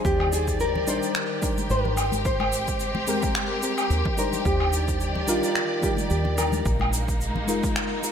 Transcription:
Already playing: fm electric piano G3 D4 D#4 C5
0.05 fingered electric bass D#2, string section D#3 G4 D5, nylon-string guitar G4, kick, cabasa
0.20 low woodblock
0.33 nylon-string guitar G#4, cabasa
0.48 kick, cabasa
0.60 nylon-string guitar A#4, cabasa
0.75 low conga
0.87 fingered electric bass A#1, fm electric piano G3 D4 D#4 A#4, nylon-string guitar C5, cabasa
1.03 cabasa
1.15 finger snap, cabasa
1.42 fm electric piano G3 D4 D#4 A#4, kick, cabasa
1.58 high conga, cabasa
1.70 fingered electric bass G#1, nylon-string guitar A#4, cabasa
1.85 low conga
1.97 string section G#3 C4, cabasa, low woodblock
2.12 high conga, low conga, cabasa
2.25 nylon-string guitar C5, kick, cabasa
2.40 high conga, low woodblock
2.53 cabasa
2.68 kick, cabasa
2.80 cabasa
2.95 high conga, low conga
3.07 fingered electric bass D#2, fm electric piano G#3 C4 G4 A#4, cabasa
3.23 kick, cabasa
3.35 finger snap, cabasa
3.62 fm electric piano G#3 C4 G4 A#4, cabasa
3.78 cabasa, low woodblock
3.90 fingered electric bass D#2, cabasa
4.05 kick, low conga
4.16 fm electric piano G3 D4 D#4 C5, nylon-string guitar A#4, cabasa
4.33 low conga, cabasa
4.45 fingered electric bass D#2, string section D#3 D5, nylon-string guitar G4, kick, cabasa
4.60 low woodblock
4.73 cabasa
4.88 kick, cabasa
5.00 cabasa
5.15 low conga
5.27 fingered electric bass A#1, fm electric piano G3 D4 D#4 A#4, nylon-string guitar F4, cabasa
5.43 cabasa
5.55 finger snap, cabasa
5.81 fm electric piano G3 D4 D#4 A#4, nylon-string guitar G4, kick, cabasa
5.97 high conga, cabasa
6.10 fingered electric bass D#2, nylon-string guitar G4, cabasa
6.25 low conga
6.38 nylon-string guitar A#4, cabasa, low woodblock
6.52 high conga, low conga, cabasa
6.65 fingered electric bass A#1, string section G#3 A#3 D#4, kick, cabasa
6.80 high conga, low woodblock
6.93 cabasa
7.08 kick, cabasa
7.21 cabasa
7.36 high conga, low conga
7.47 fingered electric bass F1, fm electric piano G#3 D#4 F4 A#4, cabasa
7.63 kick, cabasa
7.76 finger snap, cabasa
8.03 fm electric piano G#3 D#4 F4 A#4, cabasa

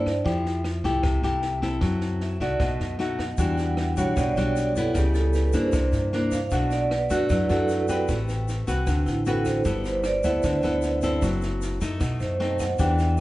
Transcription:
Already playing: upright bass G2, nylon-string guitar G2 A#3 E4 A4, vibraphone C5 D5 E5
0.06 kick, cross-stick, snare
0.25 upright bass F2, nylon-string guitar F3 A3 E4 G4, vibraphone E5, kick, snare
0.46 snare
0.64 cross-stick, snare
0.84 upright bass C2, nylon-string guitar A3 E4 G4, kick, snare
1.03 upright bass C2, nylon-string guitar C3, kick, cross-stick, snare
1.22 upright bass C2, nylon-string guitar A3 E4 G4, snare
1.42 snare
1.62 nylon-string guitar C4 E4 A4, kick, snare
1.81 upright bass F#2, nylon-string guitar F#3, kick, cross-stick, snare
2.01 snare
2.21 vibraphone E5, snare
2.40 upright bass C2, nylon-string guitar A3 D#4 F#4, vibraphone D5, kick, snare
2.60 upright bass B1, nylon-string guitar B2, kick, cross-stick, snare
2.80 upright bass F#2, snare
2.99 nylon-string guitar A3 D#4 F#4, snare
3.19 vibraphone F#5, kick, cross-stick, snare
3.38 upright bass E2, nylon-string guitar E3 G3 D4 F#4, vibraphone G5, kick, snare, shaker
3.57 vibraphone F#5, snare, shaker
3.77 vibraphone E5, cross-stick, snare
3.97 upright bass B1, nylon-string guitar G3 D4 F#4, vibraphone C#5, kick, snare, shaker
4.17 upright bass B1, nylon-string guitar B2, vibraphone D5, kick, cross-stick, snare, shaker
4.36 upright bass B1, nylon-string guitar G3 D4 F#4, snare, shaker
4.56 snare, shaker
4.76 nylon-string guitar G3 B3 E4, vibraphone A4, kick, snare, shaker
4.95 upright bass C#2, nylon-string guitar C#3, vibraphone G4, kick, cross-stick, snare, shaker
5.14 vibraphone A4, snare, shaker
5.33 vibraphone B4, snare, shaker
5.53 upright bass G2, nylon-string guitar A#3 D4 E4, vibraphone C5, kick, snare, shaker
5.72 upright bass C2, nylon-string guitar C3, kick, cross-stick, snare, shaker
5.92 upright bass G2, snare, shaker
6.13 nylon-string guitar A#3 D4 E4, snare
6.31 vibraphone F5, kick, cross-stick, snare, shaker
6.50 upright bass B1, nylon-string guitar B2 A3 D4 F#4, vibraphone F#5, kick, snare, shaker
6.71 vibraphone D5, snare, shaker
6.91 vibraphone B4, cross-stick, snare
7.10 upright bass F#2, nylon-string guitar A3 D4 F#4, vibraphone F#4, kick, snare, shaker
7.30 upright bass F#2, nylon-string guitar F#3, vibraphone E4, kick, cross-stick, snare, shaker
7.49 upright bass F#2, nylon-string guitar A3 D4 F#4, vibraphone A4, snare, shaker
7.69 snare, shaker
7.88 nylon-string guitar C4 G4 B4, kick, snare, shaker
8.08 upright bass A1, nylon-string guitar A3, kick, cross-stick, snare, shaker
8.28 snare, shaker
8.48 snare, shaker
8.67 upright bass C2, nylon-string guitar C4 F#4 B4, kick, snare, shaker
8.87 upright bass D2, nylon-string guitar D3, kick, cross-stick, snare, shaker
9.06 upright bass A1, vibraphone E4, snare, shaker
9.26 nylon-string guitar C4 F#4 B4, vibraphone A4, snare, shaker
9.45 vibraphone C5, kick, cross-stick, snare, shaker
9.65 upright bass G1, nylon-string guitar G3 B3 E4 A4, vibraphone B4, kick, snare, shaker
9.84 vibraphone C5, snare, shaker
10.04 vibraphone D5, cross-stick, snare, shaker
10.23 upright bass D2, nylon-string guitar B3 E4 A4, vibraphone E5, kick, snare, shaker
10.43 upright bass D2, nylon-string guitar D3, kick, cross-stick, snare, shaker
10.62 upright bass D2, nylon-string guitar B3 E4 A4, snare, shaker
10.82 snare, shaker
11.02 nylon-string guitar C4 E4 A4, kick, snare, shaker
11.22 upright bass F#1, nylon-string guitar F#3, kick, cross-stick, snare, shaker
11.41 snare, shaker
11.61 snare, shaker
11.81 upright bass F#2, nylon-string guitar A3 D#4, kick, snare, shaker
12.00 upright bass B1, nylon-string guitar B2, kick, cross-stick, snare, shaker
12.20 upright bass F#2, vibraphone C5, snare, shaker
12.40 nylon-string guitar A3 C4 D#4, vibraphone D#5, snare
12.59 vibraphone F#5, kick, cross-stick, snare, shaker
12.78 upright bass E2, nylon-string guitar E3 B3 D4 G4, vibraphone G5, kick, snare, shaker
12.98 vibraphone E5, snare, shaker

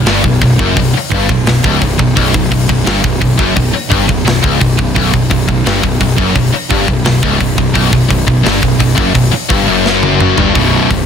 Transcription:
0.06 picked electric bass G1, distorted electric guitar G2, snare, open hi-hat
0.24 picked electric bass B0, distorted electric guitar B1, kick
0.41 picked electric bass B0, distorted electric guitar B1, kick, open hi-hat
0.59 picked electric bass F#1, distorted electric guitar F#2, kick
0.77 picked electric bass B0, distorted electric guitar B1, kick, open hi-hat
0.93 muted distorted electric guitar stroke, muted picked electric bass stroke
0.97 muted distorted electric guitar stroke
1.10 picked electric bass G1, distorted electric guitar G2, kick, open hi-hat
1.14 distorted electric guitar G2
1.29 picked electric bass B0, distorted electric guitar B1, kick
1.46 picked electric bass B0, distorted electric guitar B1, snare, open hi-hat
1.64 picked electric bass C#1, distorted electric guitar C#2, kick
1.81 picked electric bass B0, distorted electric guitar B1, kick, open hi-hat
1.99 picked electric bass B0, distorted electric guitar B1, kick
2.16 picked electric bass B0, distorted electric guitar B1, kick, open hi-hat
2.34 picked electric bass B0, distorted electric guitar B1, kick
2.51 picked electric bass B0, distorted electric guitar B1, kick, open hi-hat
2.69 picked electric bass B0, distorted electric guitar B1, kick
2.86 picked electric bass G1, distorted electric guitar G2, snare, open hi-hat
3.04 picked electric bass B0, distorted electric guitar B1, kick
3.21 picked electric bass B0, distorted electric guitar B1, kick, open hi-hat
3.39 picked electric bass F#1, distorted electric guitar F#2, kick
3.55 picked electric bass B0, distorted electric guitar B1, kick, open hi-hat
3.74 muted distorted electric guitar stroke, muted picked electric bass stroke
3.90 picked electric bass G1, distorted electric guitar G2, kick
4.08 picked electric bass B0, distorted electric guitar B1, kick
4.26 picked electric bass B0, distorted electric guitar B1, snare, open hi-hat
4.43 picked electric bass C#1, distorted electric guitar C#2, kick
4.60 picked electric bass B0, distorted electric guitar B1, kick, open hi-hat
4.78 picked electric bass B0, distorted electric guitar B1, kick
4.96 picked electric bass B0, distorted electric guitar B1, kick, open hi-hat
5.13 picked electric bass B0, distorted electric guitar B1, kick
5.30 picked electric bass B0, distorted electric guitar B1, kick, open hi-hat
5.48 picked electric bass B0, distorted electric guitar B1, kick
5.66 picked electric bass G1, distorted electric guitar G2, snare, open hi-hat
5.83 picked electric bass B0, distorted electric guitar B1, kick
6.00 picked electric bass B0, distorted electric guitar B1, kick, open hi-hat
6.17 picked electric bass F#1, distorted electric guitar F#2, kick
6.35 picked electric bass B0, distorted electric guitar B1, kick, open hi-hat
6.53 muted picked electric bass stroke, muted distorted electric guitar stroke
6.70 picked electric bass G1, distorted electric guitar G2, kick
6.88 picked electric bass B0, distorted electric guitar B1, kick
7.05 picked electric bass B0, distorted electric guitar B1, snare, open hi-hat
7.23 picked electric bass C#1, distorted electric guitar C#2, kick
7.40 picked electric bass B0, distorted electric guitar B1, kick, open hi-hat
7.58 picked electric bass B0, distorted electric guitar B1, kick
7.74 picked electric bass B0, distorted electric guitar B1, kick, open hi-hat
7.92 picked electric bass B0, distorted electric guitar B1, kick
8.08 picked electric bass B0, distorted electric guitar B1, kick, open hi-hat
8.27 picked electric bass B0, distorted electric guitar B1, kick
8.43 picked electric bass G1, distorted electric guitar G2, snare, open hi-hat
8.62 picked electric bass B0, distorted electric guitar B1, kick
8.79 picked electric bass B0, distorted electric guitar B1, kick, open hi-hat
8.96 picked electric bass F#1, distorted electric guitar F#2, kick
9.14 picked electric bass B0, distorted electric guitar B1, kick, open hi-hat
9.31 muted distorted electric guitar stroke, muted picked electric bass stroke
9.49 picked electric bass G1, distorted electric guitar G2, kick, open hi-hat
9.68 picked electric bass F#1, distorted electric guitar F#2
9.86 snare
10.03 high tom
10.20 mid tom
10.37 picked electric bass G1, distorted electric guitar G2, floor tom
10.55 picked electric bass B0, distorted electric guitar B1 F#2 B2, kick, open hi-hat
10.91 picked electric bass B0, distorted electric guitar B1 F#2, kick, open hi-hat

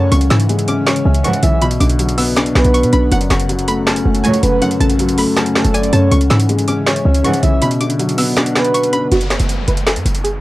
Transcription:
Already playing: 808-style bass F#2, felt piano F#2 C#3 F#3 A3 C#4, ambient pad C#4, soft synth lead C#5
0.12 808-style bass C#2, felt piano C#3, synth pluck C#6, closed hi-hat
0.21 closed hi-hat
0.30 808-style bass G#2, felt piano E3, synth pluck E6, finger snap, snare, closed hi-hat
0.40 closed hi-hat
0.49 felt piano G#3, closed hi-hat
0.59 closed hi-hat
0.68 felt piano C#4, synth pluck D6, closed hi-hat
0.86 felt piano C#5, synth pluck C#6, finger snap, snare, closed hi-hat
0.96 closed hi-hat
1.05 808-style bass C#2, felt piano C#4
1.14 closed hi-hat
1.24 string section C#2 G#2 E3, soft synth lead F#5, synth pluck C#6, closed hi-hat
1.33 closed hi-hat
1.43 808-style bass B1, felt piano E3, soft synth lead E5, closed hi-hat
1.62 felt piano B2, ambient pad F#5, synth pluck B5, closed hi-hat
1.71 closed hi-hat
1.80 808-style bass B1, felt piano D3, synth pluck D6, closed hi-hat
1.90 closed hi-hat
1.99 felt piano F#3, closed hi-hat
2.09 closed hi-hat
2.18 felt piano B3, synth pluck E6, open hi-hat
2.36 felt piano D4, synth pluck D6, finger snap, snare
2.46 closed hi-hat
2.55 808-style bass B1, felt piano B3, soft synth lead B4, finger snap, snare
2.65 808-style bass B1, closed hi-hat
2.74 synth pluck C#6, closed hi-hat
2.83 808-style bass B2, closed hi-hat
2.93 808-style bass B1, felt piano D3, synth pluck B5, closed hi-hat
3.12 808-style bass F#1, felt piano F#2, ambient pad F#3 C#4 A4, synth pluck F#5, closed hi-hat
3.21 closed hi-hat
3.30 808-style bass F#1, felt piano C#3, synth pluck C#6, finger snap, snare, closed hi-hat
3.40 closed hi-hat
3.49 felt piano F#3, closed hi-hat
3.59 closed hi-hat
3.68 felt piano A3, synth pluck B5, closed hi-hat
3.86 felt piano C#4, synth pluck A5, finger snap, snare, closed hi-hat
3.96 closed hi-hat
4.05 808-style bass F#1, felt piano A3
4.15 closed hi-hat
4.24 string section C#2 A2 F#3, soft synth lead C#5, synth pluck G#5, closed hi-hat
4.34 closed hi-hat
4.43 808-style bass F#1, felt piano C#3, soft synth lead B4, closed hi-hat
4.61 felt piano F#2, synth pluck F#5, closed hi-hat
4.71 closed hi-hat
4.80 808-style bass A1, felt piano C#3, synth pluck A5, closed hi-hat
4.90 closed hi-hat
4.99 felt piano F#3, closed hi-hat
5.09 closed hi-hat
5.18 felt piano A3, synth pluck B5, open hi-hat
5.37 felt piano C#4, synth pluck A5, finger snap, snare, closed hi-hat
5.46 closed hi-hat
5.55 felt piano A3, soft synth lead A4, finger snap, snare
5.65 808-style bass F#1, closed hi-hat
5.74 soft synth lead D5, synth pluck G#5, closed hi-hat
5.83 closed hi-hat
5.93 808-style bass F#2, felt piano C#3, soft synth lead C#5, synth pluck A5, closed hi-hat
6.11 808-style bass C#2, felt piano C#3, synth pluck C#6, closed hi-hat
6.21 closed hi-hat
6.30 808-style bass G#2, felt piano E3, synth pluck E6, finger snap, snare, closed hi-hat
6.40 closed hi-hat
6.49 felt piano G#3, closed hi-hat
6.59 closed hi-hat
6.68 felt piano C#4, synth pluck D6, closed hi-hat
6.87 felt piano C#5, synth pluck C#6, finger snap, snare, closed hi-hat
6.96 closed hi-hat
7.05 808-style bass C#2, felt piano C#4
7.15 closed hi-hat
7.24 string section C#2 G#2 E3, soft synth lead F#5, synth pluck C#6, closed hi-hat
7.33 closed hi-hat
7.43 808-style bass B1, felt piano E3, soft synth lead E5, closed hi-hat
7.62 felt piano B2, synth pluck B5, closed hi-hat
7.71 closed hi-hat
7.80 felt piano D3, synth pluck D6, closed hi-hat
7.90 closed hi-hat
7.99 felt piano F#3, closed hi-hat
8.09 closed hi-hat
8.18 felt piano B3, synth pluck E6, open hi-hat
8.36 felt piano D4, synth pluck D6, finger snap, snare
8.46 closed hi-hat
8.55 felt piano B3, soft synth lead B4, finger snap, snare
8.65 closed hi-hat
8.74 synth pluck C#6, closed hi-hat
8.84 closed hi-hat
8.93 felt piano D3, synth pluck B5, closed hi-hat
9.12 808-style bass F#1, synth pluck F#4, closed hi-hat, downlifter
9.21 closed hi-hat
9.30 synth pluck C#5, finger snap, snare, closed hi-hat
9.40 808-style bass F#1, closed hi-hat
9.49 closed hi-hat
9.68 808-style bass F#1, synth pluck B4, closed hi-hat
9.77 closed hi-hat
9.87 synth pluck A4, finger snap, snare, closed hi-hat
9.96 808-style bass F#2, closed hi-hat
10.05 808-style bass F#1, closed hi-hat
10.15 closed hi-hat
10.24 synth pluck G#4, closed hi-hat

